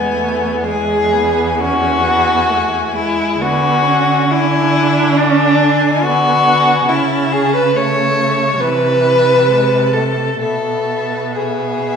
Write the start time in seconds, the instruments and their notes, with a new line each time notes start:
Already playing: cello E2, viola G#3, violin B3 G#5
0.13 viola A3
0.64 viola G#3, violin G#4 G#5
1.13 viola B3
1.58 viola C#4, violin F#4
2.04 viola B3
2.50 viola A3
2.95 viola G#3, violin E4
3.41 cello D3, viola B3, violin F#4 G#5
3.86 viola C#4
4.31 viola D4, violin E4 G#5
5.17 violin D4 G#5
6.02 viola B3, violin F#4
6.88 cello C#3, viola C#4, violin E4 A5
7.32 violin G#4
7.55 violin B4
7.76 viola A3, violin C#5 A5
8.60 cello C3, viola E3, violin B4 A5
9.49 viola G#3
9.93 viola A3, violin A4
10.40 cello B2, viola B3, violin A4 E5
11.35 violin G#4 E5